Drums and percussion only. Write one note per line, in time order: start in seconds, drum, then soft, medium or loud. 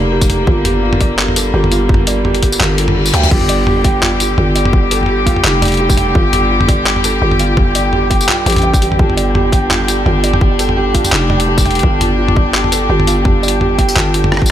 0.21 kick loud
0.21 tambourine medium
0.30 closed hi-hat medium
0.30 mid tom medium
0.47 kick loud
0.65 closed hi-hat medium
0.65 mid tom medium
0.93 mid tom medium
1.01 kick loud
1.01 closed hi-hat medium
1.19 clap loud
1.28 mid tom medium
1.36 closed hi-hat medium
1.36 tambourine medium
1.64 mid tom medium
1.72 closed hi-hat medium
1.72 tambourine soft
1.89 kick loud
1.94 mid tom medium
2.07 closed hi-hat medium
2.07 tambourine soft
2.25 mid tom medium
2.35 closed hi-hat soft
2.43 kick medium
2.43 closed hi-hat medium
2.52 tambourine medium
2.60 clap loud
2.60 mid tom medium
2.78 closed hi-hat medium
2.88 mid tom medium
3.06 tambourine medium
3.14 closed hi-hat medium
3.23 mid tom medium
3.23 tambourine soft
3.31 kick loud
3.31 crash medium
3.41 mid tom medium
3.49 closed hi-hat medium
3.67 mid tom medium
3.84 kick loud
3.84 closed hi-hat medium
4.03 clap loud
4.03 mid tom medium
4.20 closed hi-hat medium
4.20 tambourine medium
4.38 mid tom medium
4.56 closed hi-hat medium
4.56 tambourine soft
4.65 mid tom medium
4.73 kick loud
4.91 closed hi-hat medium
4.91 tambourine soft
5.01 mid tom soft
5.03 mid tom soft
5.06 mid tom soft
5.26 kick medium
5.26 closed hi-hat medium
5.36 mid tom medium
5.44 clap loud
5.62 closed hi-hat medium
5.62 mid tom medium
5.65 closed hi-hat medium
5.68 closed hi-hat medium
5.72 closed hi-hat soft
5.74 closed hi-hat soft
5.77 closed hi-hat soft
5.89 kick loud
5.89 tambourine medium
5.97 closed hi-hat medium
5.97 mid tom medium
6.15 kick loud
6.33 closed hi-hat medium
6.33 mid tom medium
6.61 mid tom medium
6.68 kick loud
6.68 closed hi-hat medium
6.86 clap loud
6.96 mid tom medium
7.04 closed hi-hat medium
7.04 tambourine medium
7.31 mid tom medium
7.39 closed hi-hat medium
7.39 tambourine soft
7.57 kick loud
7.57 mid tom medium
7.75 closed hi-hat medium
7.75 tambourine soft
7.93 mid tom soft
8.11 kick medium
8.11 closed hi-hat medium
8.21 tambourine medium
8.29 clap loud
8.29 mid tom medium
8.46 closed hi-hat medium
8.50 closed hi-hat medium
8.52 closed hi-hat soft
8.56 closed hi-hat soft
8.56 mid tom medium
8.58 closed hi-hat soft
8.62 closed hi-hat soft
8.74 kick loud
8.74 tambourine medium
8.82 closed hi-hat medium
8.92 mid tom medium
8.99 kick loud
9.10 mid tom soft
9.18 closed hi-hat medium
9.35 mid tom medium
9.53 kick loud
9.53 closed hi-hat medium
9.71 clap loud
9.71 mid tom medium
9.88 closed hi-hat medium
9.88 tambourine medium
10.06 mid tom medium
10.24 closed hi-hat medium
10.24 tambourine soft
10.34 mid tom medium
10.41 kick loud
10.59 closed hi-hat medium
10.59 tambourine soft
10.69 mid tom medium
10.95 kick medium
10.95 closed hi-hat medium
11.04 mid tom medium
11.04 tambourine medium
11.12 clap loud
11.30 mid tom medium
11.40 closed hi-hat medium
11.58 kick loud
11.58 tambourine medium
11.65 closed hi-hat soft
11.65 mid tom medium
11.71 closed hi-hat soft
11.75 closed hi-hat soft
11.79 kick loud
11.79 closed hi-hat medium
12.01 closed hi-hat medium
12.01 mid tom medium
12.28 mid tom medium
12.36 kick loud
12.54 clap loud
12.64 mid tom medium
12.72 closed hi-hat medium
12.72 tambourine medium
13.00 mid tom medium
13.07 closed hi-hat medium
13.07 tambourine soft
13.25 kick loud
13.25 mid tom medium
13.43 tambourine soft
13.48 closed hi-hat medium
13.61 mid tom medium
13.78 kick medium
13.78 closed hi-hat medium
13.89 tambourine medium
13.96 clap loud
13.96 mid tom medium
14.14 closed hi-hat medium
14.24 mid tom medium
14.32 cross-stick medium
14.37 cross-stick medium
14.42 kick loud
14.46 tambourine medium